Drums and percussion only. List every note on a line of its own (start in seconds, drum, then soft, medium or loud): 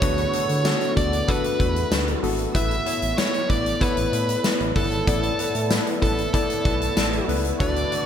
0.02 kick loud
0.02 closed hi-hat loud
0.18 closed hi-hat medium
0.33 closed hi-hat medium
0.49 closed hi-hat medium
0.65 snare loud
0.65 tambourine medium
0.81 closed hi-hat medium
0.97 kick medium
0.97 closed hi-hat medium
1.13 closed hi-hat medium
1.28 kick medium
1.28 closed hi-hat medium
1.44 closed hi-hat medium
1.60 kick loud
1.60 closed hi-hat medium
1.76 closed hi-hat medium
1.92 snare loud
1.92 tambourine medium
2.08 closed hi-hat soft
2.23 open hi-hat medium
2.39 closed hi-hat medium
2.55 kick loud
2.55 closed hi-hat loud
2.71 closed hi-hat medium
2.86 closed hi-hat medium
3.02 closed hi-hat medium
3.18 snare loud
3.18 tambourine medium
3.34 closed hi-hat soft
3.50 kick medium
3.50 closed hi-hat medium
3.66 closed hi-hat medium
3.81 kick medium
3.81 closed hi-hat medium
3.97 closed hi-hat medium
4.13 closed hi-hat medium
4.29 closed hi-hat medium
4.44 snare loud
4.44 tambourine medium
4.60 closed hi-hat soft
4.76 kick medium
4.76 open hi-hat medium
4.92 closed hi-hat medium
5.07 kick loud
5.07 closed hi-hat loud
5.23 closed hi-hat medium
5.39 closed hi-hat medium
5.55 closed hi-hat medium
5.70 snare loud
5.70 tambourine medium
5.87 closed hi-hat soft
6.02 kick medium
6.02 closed hi-hat medium
6.18 closed hi-hat medium
6.34 kick loud
6.34 closed hi-hat medium
6.50 closed hi-hat medium
6.65 kick loud
6.65 closed hi-hat medium
6.81 closed hi-hat medium
6.97 snare loud
6.97 tambourine medium
7.13 closed hi-hat soft
7.29 open hi-hat medium
7.44 closed hi-hat medium
7.60 kick loud
7.60 closed hi-hat loud
7.76 closed hi-hat soft
7.92 closed hi-hat medium